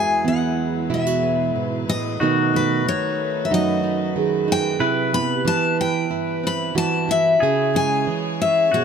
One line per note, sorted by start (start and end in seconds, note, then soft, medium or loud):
0.00 1.55 E2 medium
0.00 4.76 F#3 medium
0.00 2.17 G#3 medium
0.00 2.16 E4 medium
0.00 0.90 F#4 medium
0.00 2.16 G#4 medium
0.00 7.36 B4 medium
0.00 0.27 G#5 medium
0.24 2.17 E3 medium
0.24 2.49 B3 medium
0.24 0.93 F#5 medium
0.90 1.88 B2 medium
0.90 1.07 E4 medium
0.94 1.53 E5 medium
1.07 2.21 F#4 medium
1.23 2.23 B3 medium
1.56 1.88 G#2 medium
1.88 2.21 A2 medium
1.88 2.56 D#5 medium
2.20 2.86 B2 medium
2.20 2.85 D#3 medium
2.20 4.78 A3 medium
2.20 2.53 A3 medium
2.20 4.46 D#4 medium
2.20 4.78 D#4 medium
2.20 3.50 D#4 medium
2.20 4.76 F#4 medium
2.54 4.77 A3 medium
2.54 2.88 B4 medium
2.86 4.15 D#3 medium
2.86 3.47 C#5 medium
3.45 3.51 E5 medium
3.50 4.76 F#2 medium
3.50 5.09 F#3 medium
3.50 3.82 D#4 medium
3.50 4.13 D#5 medium
3.84 4.47 D#4 medium
4.16 4.77 D#3 medium
4.16 5.09 G#4 medium
4.48 4.76 D#4 medium
4.52 5.14 G5 loud
4.80 5.45 C3 medium
4.80 7.38 E3 medium
4.80 6.10 E4 medium
4.80 8.69 E4 medium
4.80 7.49 B4 loud
5.12 7.37 B3 medium
5.12 7.39 E4 medium
5.12 5.47 B5 loud
5.34 7.58 G4 medium
5.45 6.74 E3 medium
5.45 5.77 A5 loud
5.81 6.46 G5 medium
6.10 7.37 G2 medium
6.10 7.08 E4 medium
6.43 7.37 C4 medium
6.43 6.77 B5 medium
6.75 7.37 E3 medium
6.75 7.69 F#4 medium
6.75 7.10 A5 medium
7.09 7.41 E4 medium
7.09 7.77 E5 loud
7.40 8.71 C#3 medium
7.40 8.07 C#3 medium
7.40 8.68 G#4 medium
7.40 8.72 G#4 medium
7.40 8.69 G#4 medium
7.40 8.85 C#5 medium
7.75 8.69 G#3 medium
7.75 8.41 G#5 loud
8.07 8.69 E3 medium
8.42 8.74 E5 medium
8.72 8.85 B2 medium
8.72 8.85 B3 medium
8.72 8.85 C#4 medium
8.72 8.85 F#4 medium
8.72 8.85 G#4 medium
8.72 8.85 C#5 medium